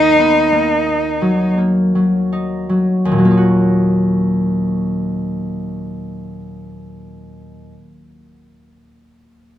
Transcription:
Already playing: D#2 A#3 D#4
0.19 B3
0.52 A#3
0.86 D#4
1.22 F#3
1.58 A#3
1.95 F#3
2.32 D#4
2.69 F#3
3.05 D#2
3.12 A#2
3.18 F#3
3.25 A#3
3.31 D#4
3.37 F#4

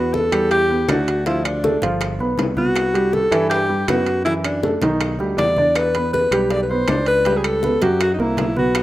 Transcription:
Already playing: E2 B3 F#4 B4
0.14 A4, high bongo, high conga
0.32 E2 G3 G4, high bongo, high conga, high timbale, claves
0.51 G4, high bongo, high conga, high timbale
0.70 B3 B4, high conga
0.88 D2 D4 F#4 D5, high bongo, low bongo, high conga, high timbale, claves
1.08 high bongo, high conga, high timbale
1.26 F3 E4 F4, high bongo, high conga, high timbale
1.45 D4, high bongo, high conga, high timbale, claves
1.64 A3 A4, high bongo, high conga
1.82 G1 F3 F4, high bongo, high conga, high timbale
2.01 high bongo, high conga, high timbale, claves
2.19 B1 B3 B4, high bongo, high conga
2.38 C2, high bongo, low bongo, high conga, high timbale
2.57 B3 F#4 B4, high conga
2.76 high bongo, high conga, high timbale, claves
2.94 G3 G4, high bongo, high conga, high timbale
3.13 A4, high bongo, high conga
3.32 G2 E3 E4, high bongo, high conga, high timbale, claves
3.49 G4, high bongo, high conga, high timbale
3.69 G3 G4, high conga
3.88 F#2 B3 F#4 B4, high bongo, low bongo, high conga, high timbale, claves
4.06 high bongo, high conga, high timbale
4.25 E3 E4, high bongo, high conga, high timbale
4.44 D4, high bongo, high conga, high timbale, claves
4.63 A3 A4, high bongo, high conga
4.82 B1 D#3 D#4, high bongo, high conga, high timbale
5.01 high bongo, high conga, high timbale, claves
5.19 D2 G3 G4, high bongo, high conga
5.37 E2 D5, high bongo, low bongo, high conga, high timbale
5.57 D4 D5, high conga
5.75 B4, high bongo, high conga, high timbale, claves
5.94 B3 B4, high bongo, high conga, high timbale
6.13 B4, high bongo, high conga
6.31 B1 G3 G4, high bongo, high conga, high timbale, claves
6.50 D5, high bongo, high conga, high timbale
6.63 B4
6.70 B3 B4 C5, high conga
6.88 C#2 D4 D5, high bongo, low bongo, high conga, high timbale, claves
7.06 B4, high bongo, high conga, high timbale
7.25 G3 G4, high bongo, high conga, high timbale
7.37 G#4
7.44 A4, high bongo, high conga, high timbale, claves
7.63 B3 B4, high bongo, high conga
7.81 F#2 F#3 F#4 G4, high bongo, high conga, high timbale
8.01 F#4, high bongo, high conga, high timbale, claves
8.14 D#4
8.19 C2 A#3 E4 A#4, high bongo, high conga
8.37 B1, high bongo, low bongo, high conga, high timbale, low timbale
8.56 B3 F#4 B4, high conga
8.75 high bongo, high conga, high timbale, claves

